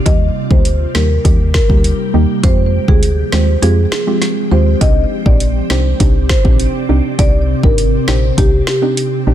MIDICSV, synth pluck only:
0, 0, Header, 1, 2, 480
1, 0, Start_track
1, 0, Key_signature, -3, "minor"
1, 0, Tempo, 594059
1, 48, Time_signature, 4, 2, 24, 8
1, 7549, End_track
2, 0, Start_track
2, 0, Title_t, "Synth pluck"
2, 0, Program_c, 0, 84
2, 46, Note_on_c, 0, 55, 94
2, 48, Note_on_c, 0, 58, 87
2, 49, Note_on_c, 0, 63, 84
2, 50, Note_on_c, 0, 67, 106
2, 379, Note_off_c, 0, 55, 0
2, 379, Note_off_c, 0, 58, 0
2, 380, Note_off_c, 0, 63, 0
2, 381, Note_off_c, 0, 67, 0
2, 406, Note_on_c, 0, 55, 78
2, 409, Note_on_c, 0, 58, 69
2, 410, Note_on_c, 0, 63, 69
2, 411, Note_on_c, 0, 67, 86
2, 518, Note_off_c, 0, 55, 0
2, 520, Note_off_c, 0, 58, 0
2, 520, Note_off_c, 0, 63, 0
2, 521, Note_off_c, 0, 67, 0
2, 767, Note_on_c, 0, 55, 75
2, 768, Note_on_c, 0, 58, 74
2, 769, Note_on_c, 0, 63, 72
2, 771, Note_on_c, 0, 67, 84
2, 879, Note_off_c, 0, 55, 0
2, 879, Note_off_c, 0, 58, 0
2, 880, Note_off_c, 0, 63, 0
2, 881, Note_off_c, 0, 67, 0
2, 1005, Note_on_c, 0, 55, 92
2, 1007, Note_on_c, 0, 58, 86
2, 1010, Note_on_c, 0, 63, 84
2, 1011, Note_on_c, 0, 67, 101
2, 1118, Note_off_c, 0, 55, 0
2, 1119, Note_off_c, 0, 58, 0
2, 1120, Note_off_c, 0, 63, 0
2, 1121, Note_off_c, 0, 67, 0
2, 1365, Note_on_c, 0, 55, 80
2, 1367, Note_on_c, 0, 58, 74
2, 1369, Note_on_c, 0, 63, 77
2, 1370, Note_on_c, 0, 67, 92
2, 1698, Note_off_c, 0, 55, 0
2, 1699, Note_off_c, 0, 58, 0
2, 1700, Note_off_c, 0, 63, 0
2, 1701, Note_off_c, 0, 67, 0
2, 1727, Note_on_c, 0, 55, 75
2, 1728, Note_on_c, 0, 58, 72
2, 1729, Note_on_c, 0, 63, 73
2, 1732, Note_on_c, 0, 67, 88
2, 1948, Note_off_c, 0, 55, 0
2, 1949, Note_off_c, 0, 58, 0
2, 1950, Note_off_c, 0, 63, 0
2, 1951, Note_off_c, 0, 67, 0
2, 1967, Note_on_c, 0, 56, 97
2, 1969, Note_on_c, 0, 60, 91
2, 1971, Note_on_c, 0, 65, 87
2, 1972, Note_on_c, 0, 67, 105
2, 2299, Note_off_c, 0, 56, 0
2, 2300, Note_off_c, 0, 60, 0
2, 2301, Note_off_c, 0, 65, 0
2, 2302, Note_off_c, 0, 67, 0
2, 2328, Note_on_c, 0, 56, 80
2, 2330, Note_on_c, 0, 60, 72
2, 2331, Note_on_c, 0, 65, 73
2, 2333, Note_on_c, 0, 67, 85
2, 2439, Note_off_c, 0, 56, 0
2, 2440, Note_off_c, 0, 60, 0
2, 2441, Note_off_c, 0, 65, 0
2, 2442, Note_off_c, 0, 67, 0
2, 2687, Note_on_c, 0, 56, 77
2, 2690, Note_on_c, 0, 60, 72
2, 2691, Note_on_c, 0, 65, 72
2, 2692, Note_on_c, 0, 67, 83
2, 2799, Note_off_c, 0, 56, 0
2, 2800, Note_off_c, 0, 60, 0
2, 2801, Note_off_c, 0, 65, 0
2, 2801, Note_off_c, 0, 67, 0
2, 2928, Note_on_c, 0, 56, 93
2, 2930, Note_on_c, 0, 60, 88
2, 2931, Note_on_c, 0, 65, 84
2, 2933, Note_on_c, 0, 67, 103
2, 3039, Note_off_c, 0, 56, 0
2, 3040, Note_off_c, 0, 60, 0
2, 3041, Note_off_c, 0, 65, 0
2, 3042, Note_off_c, 0, 67, 0
2, 3288, Note_on_c, 0, 56, 83
2, 3290, Note_on_c, 0, 60, 71
2, 3291, Note_on_c, 0, 65, 75
2, 3292, Note_on_c, 0, 67, 87
2, 3620, Note_off_c, 0, 56, 0
2, 3620, Note_off_c, 0, 60, 0
2, 3621, Note_off_c, 0, 65, 0
2, 3622, Note_off_c, 0, 67, 0
2, 3646, Note_on_c, 0, 56, 78
2, 3648, Note_on_c, 0, 60, 71
2, 3649, Note_on_c, 0, 65, 70
2, 3650, Note_on_c, 0, 67, 84
2, 3868, Note_off_c, 0, 56, 0
2, 3869, Note_off_c, 0, 60, 0
2, 3870, Note_off_c, 0, 65, 0
2, 3870, Note_off_c, 0, 67, 0
2, 3886, Note_on_c, 0, 60, 94
2, 3888, Note_on_c, 0, 62, 90
2, 3890, Note_on_c, 0, 63, 86
2, 3892, Note_on_c, 0, 67, 109
2, 4219, Note_off_c, 0, 60, 0
2, 4220, Note_off_c, 0, 62, 0
2, 4221, Note_off_c, 0, 63, 0
2, 4221, Note_off_c, 0, 67, 0
2, 4247, Note_on_c, 0, 60, 77
2, 4250, Note_on_c, 0, 62, 71
2, 4250, Note_on_c, 0, 63, 72
2, 4252, Note_on_c, 0, 67, 85
2, 4359, Note_off_c, 0, 60, 0
2, 4360, Note_off_c, 0, 62, 0
2, 4360, Note_off_c, 0, 63, 0
2, 4361, Note_off_c, 0, 67, 0
2, 4607, Note_on_c, 0, 60, 77
2, 4609, Note_on_c, 0, 62, 73
2, 4611, Note_on_c, 0, 63, 69
2, 4612, Note_on_c, 0, 67, 89
2, 4719, Note_off_c, 0, 60, 0
2, 4720, Note_off_c, 0, 62, 0
2, 4721, Note_off_c, 0, 63, 0
2, 4721, Note_off_c, 0, 67, 0
2, 4845, Note_on_c, 0, 60, 94
2, 4847, Note_on_c, 0, 62, 84
2, 4848, Note_on_c, 0, 63, 82
2, 4850, Note_on_c, 0, 67, 102
2, 4958, Note_off_c, 0, 60, 0
2, 4959, Note_off_c, 0, 62, 0
2, 4959, Note_off_c, 0, 63, 0
2, 4960, Note_off_c, 0, 67, 0
2, 5205, Note_on_c, 0, 60, 80
2, 5206, Note_on_c, 0, 62, 73
2, 5207, Note_on_c, 0, 63, 75
2, 5210, Note_on_c, 0, 67, 88
2, 5538, Note_off_c, 0, 60, 0
2, 5539, Note_off_c, 0, 62, 0
2, 5539, Note_off_c, 0, 63, 0
2, 5540, Note_off_c, 0, 67, 0
2, 5566, Note_on_c, 0, 60, 75
2, 5567, Note_on_c, 0, 62, 71
2, 5569, Note_on_c, 0, 63, 72
2, 5571, Note_on_c, 0, 67, 83
2, 5788, Note_off_c, 0, 60, 0
2, 5789, Note_off_c, 0, 62, 0
2, 5790, Note_off_c, 0, 63, 0
2, 5791, Note_off_c, 0, 67, 0
2, 5805, Note_on_c, 0, 60, 94
2, 5806, Note_on_c, 0, 62, 87
2, 5808, Note_on_c, 0, 63, 83
2, 5810, Note_on_c, 0, 67, 110
2, 6138, Note_off_c, 0, 60, 0
2, 6139, Note_off_c, 0, 62, 0
2, 6140, Note_off_c, 0, 63, 0
2, 6141, Note_off_c, 0, 67, 0
2, 6167, Note_on_c, 0, 60, 77
2, 6169, Note_on_c, 0, 62, 74
2, 6170, Note_on_c, 0, 63, 69
2, 6172, Note_on_c, 0, 67, 85
2, 6279, Note_off_c, 0, 60, 0
2, 6280, Note_off_c, 0, 62, 0
2, 6280, Note_off_c, 0, 63, 0
2, 6281, Note_off_c, 0, 67, 0
2, 6528, Note_on_c, 0, 60, 74
2, 6529, Note_on_c, 0, 62, 74
2, 6530, Note_on_c, 0, 63, 69
2, 6532, Note_on_c, 0, 67, 88
2, 6639, Note_off_c, 0, 60, 0
2, 6640, Note_off_c, 0, 62, 0
2, 6640, Note_off_c, 0, 63, 0
2, 6641, Note_off_c, 0, 67, 0
2, 6766, Note_on_c, 0, 60, 93
2, 6767, Note_on_c, 0, 62, 86
2, 6768, Note_on_c, 0, 63, 86
2, 6771, Note_on_c, 0, 67, 101
2, 6878, Note_off_c, 0, 60, 0
2, 6879, Note_off_c, 0, 62, 0
2, 6879, Note_off_c, 0, 63, 0
2, 6880, Note_off_c, 0, 67, 0
2, 7125, Note_on_c, 0, 60, 79
2, 7127, Note_on_c, 0, 62, 73
2, 7128, Note_on_c, 0, 63, 75
2, 7130, Note_on_c, 0, 67, 93
2, 7458, Note_off_c, 0, 60, 0
2, 7459, Note_off_c, 0, 62, 0
2, 7460, Note_off_c, 0, 63, 0
2, 7460, Note_off_c, 0, 67, 0
2, 7488, Note_on_c, 0, 60, 78
2, 7489, Note_on_c, 0, 62, 70
2, 7490, Note_on_c, 0, 63, 73
2, 7492, Note_on_c, 0, 67, 87
2, 7549, Note_off_c, 0, 60, 0
2, 7549, Note_off_c, 0, 62, 0
2, 7549, Note_off_c, 0, 63, 0
2, 7549, Note_off_c, 0, 67, 0
2, 7549, End_track
0, 0, End_of_file